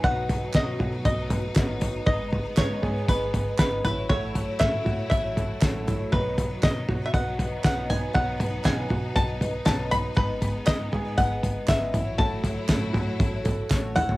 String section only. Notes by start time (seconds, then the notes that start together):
Already playing: F#3 D#4
0.05 A3
2.07 G#3 B3
3.86 F#3 A3 E4
6.13 B3 D#4
10.18 G#3 B3
11.94 F#3 A3 E4